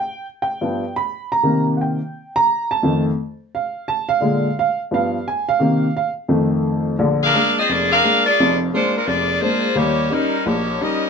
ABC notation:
X:1
M:4/4
L:1/8
Q:"Swing" 1/4=173
K:Fdor
V:1 name="Saxophone section"
z8 | z8 | z8 | z8 |
z8 | [K:Bb] z [D_ABf]2 [CFAe] [B,FAd] [DABf]2 [B,FAd]- | [B,F_Ad] z [_A,DFc] [A,DFB] [B,FAd]2 [B,FAc]2 | [B,EG_d]2 [G,_DEB]2 [B,EGd]2 [DGBe]2 |]
V:2 name="Upright piano"
g z g3 =b2 _b- | b z [_g=g]3 b2 =a- | =a z3 f2 a f- | f2 f z f2 a f- |
f2 f z4 z | [K:Bb] z8 | z8 | z8 |]
V:3 name="Upright piano" clef=bass
z3 [G,,F,=B,] z4 | [C,E,B,]3 z4 z | [F,,E,=A,] z6 z | [B,,D,A,] z3 [G,,F,=B,] z3 |
[C,E,B,] z3 [F,,E,=A,]4 | [K:Bb] [B,,,D,]2 [_A,B,D] z F,,,2 [A,B,D] z | [F,,,F,,]2 [_A,B,D] z F,,,2 [A,B,D] z | [E,,G,]2 [G,_DE] z B,,,2 [G,DE] z |]